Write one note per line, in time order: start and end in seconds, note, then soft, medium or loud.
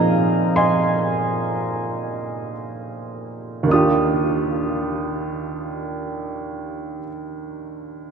0.00 3.67 A#2 soft
0.00 3.68 F3 soft
0.00 3.68 C4 soft
0.00 3.69 D#4 soft
0.00 3.69 G#4 soft
0.00 0.54 D#5 medium
0.00 1.47 F5 soft
0.00 0.55 A#5 medium
0.56 2.51 D#5 medium
0.56 2.51 G#5 soft
0.56 2.15 C6 medium
3.63 6.97 D#2 soft
3.63 6.99 D#3 soft
3.69 7.03 D4 soft
3.69 7.06 F4 soft
3.69 7.01 D#6 medium
3.75 7.09 G4 medium